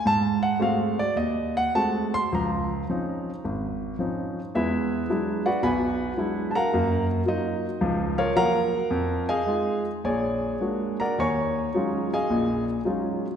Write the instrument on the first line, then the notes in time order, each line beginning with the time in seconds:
grand piano
0.05 G#2 A5
0.43 F#5
0.59 G#3 A3 C4 F#4 F5
0.99 D5
1.16 D#2 D#5
1.57 F#5
1.75 G#3 A3 C4 F#4 A5
2.14 C6
2.32 C#2 F3 A#5
2.89 F3 C4 C#4 D#4
3.44 G#1
3.99 F3 C4 C#4 D#4
4.55 E2 G#3 E4 G#4 B4 E5
5.10 F#3 G#3 D4 E4
5.46 F#4 B4 D5 F#5
5.63 B1 B2 B4 F#5 G#5 B5
6.17 F#3 G#3 D4 E4
6.51 A5
6.55 A#4 F5 F#5 A#5
6.74 F#2 A#3
7.26 F#3 A#3 D#4 F4 D#5
7.81 C#2 F3
8.18 F4 A#4 C#5 F5
8.36 F3 F#3 A#3 A#4 F5 F#5 A#5
8.90 F2
9.29 G#4 D#5 F5 G#5
9.46 G#3 D#4 F4
10.04 A#1 G#4 C#5 D5 G#5
10.60 G#3 A#3 D4 F#4
11.00 A#4 D5 F#5 A#5
11.18 D#2 D#3 C#5 G#5 A#5 C#6
11.74 F#3 G#3 C#4 D#4 F4
12.13 G#4 D#5 F5 G#5
12.30 A#1 A#2
12.85 F#3 G#3 C#4 D#4 F4